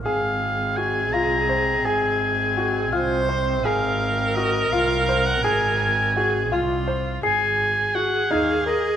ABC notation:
X:1
M:5/8
L:1/16
Q:1/4=84
K:Fphr
V:1 name="Celesta"
f'2 z8 | z6 f'4- | f'8- f'2 | z2 a'8 |
c''6 a'4 |]
V:2 name="Oboe"
f4 a2 b4 | a8 z2 | f4 e2 f3 g | a8 z2 |
a4 g2 f2 e2 |]
V:3 name="Viola"
A8- A2- | A6 c4 | B8- B2- | B4 A2 F4 |
A8- A2 |]
V:4 name="Grand piano"
A4 G2 F2 c2 | A4 G2 F2 c2 | A4 G2 F2 c2 | A4 G2 F2 c2 |
A4 G2 E2 B2 |]
V:5 name="Woodwind section" clef=bass
[C,A,C]8- [C,A,C]2- | [C,A,C]8- [C,A,C]2- | [C,A,C]8- [C,A,C]2- | [C,A,C]8- [C,A,C]2 |
z8 z2 |]
V:6 name="Double bass" clef=bass
A,,,6 C,,4 | A,,,6 C,,4 | A,,,6 C,,4 | A,,,6 C,,4 |
A,,,6 E,,4 |]